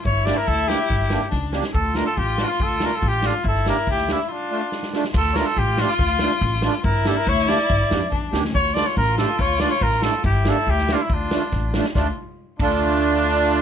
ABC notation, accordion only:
X:1
M:2/4
L:1/16
Q:1/4=141
K:Dm
V:1 name="Accordion"
z2 [B,DG] z3 [B,DG] z | z2 [B,DG] z3 [B,DG] z | z2 [A,DF] z3 [A,DF] z | z2 [A,DF] z3 [A,DG] z |
z2 [B,DG] z3 [B,DG] z | z2 [A,DF] z3 [A,DF] z | z2 [A,DF] z3 [A,DG] z | z2 [A,DF] z3 [A,DF] z |
z2 [B,DG] z3 [B,DG] z | z2 [B,DG] z3 [B,DG] z | z2 [A,DF] z3 [A,DG] z | z2 [A,DF] z3 [A,DE] z |
z2 [B,DG] z3 [B,DG] z | z2 [A,DF] z3 [A,DF] z | [A,DF]2 z4 [A,DF]2- | [A,DF]8 |]